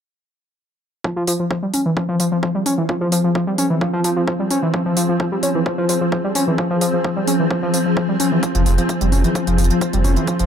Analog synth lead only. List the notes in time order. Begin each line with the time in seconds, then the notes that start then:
1.04 F3
1.16 F3
1.27 F3
1.39 F3
1.51 F3
1.63 G3
1.74 C#4
1.86 E3
1.97 F3
2.09 F3
2.20 F3
2.32 F3
2.43 F3
2.55 G3
2.66 C#4
2.78 E3
2.89 F3
3.01 F3
3.12 F3
3.24 F3
3.35 F3
3.47 G3
3.58 C#4
3.70 E3
3.81 F3
3.93 F3
4.04 F3
4.16 F3
4.27 F3
4.39 G3
4.51 C#4
4.63 E3
4.74 F3
4.86 F3
4.97 F3
5.09 F3
5.20 F3
5.32 G3
5.43 C#4
5.55 E3
5.66 F3
5.78 F3
5.89 F3
6.01 F3
6.12 F3
6.24 G3
6.35 C#4
6.47 E3
6.58 F3
6.70 F3
6.81 F3
6.93 F3
7.04 F3
7.16 G3
7.27 C#4
7.39 E3
7.51 F3
7.63 F3
7.74 F3
7.86 F3
7.97 F3
8.09 G3
8.20 C#4
8.32 E3
8.43 F3
8.55 F3
8.66 F3
8.78 F3
8.89 F3
9.01 G3
9.12 C#4
9.24 E3
9.35 F3
9.47 F3
9.58 F3
9.70 F3
9.81 F3
9.93 G3
10.04 C#4
10.17 E3
10.28 F3
10.40 F3